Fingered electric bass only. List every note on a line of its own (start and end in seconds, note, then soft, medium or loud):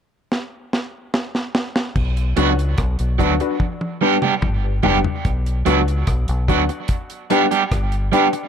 1.96 2.33 B1 loud
2.38 2.75 C#2 medium
2.79 2.98 B1 medium
3.00 3.18 B1 medium
3.20 3.39 D2 medium
4.43 4.80 G1 medium
4.85 5.03 F#1 loud
5.26 5.63 B1 medium
5.67 6.04 C#2 loud
6.08 6.26 B1 medium
6.29 6.47 B1 medium
6.49 6.68 D2 medium
7.72 8.09 G1 medium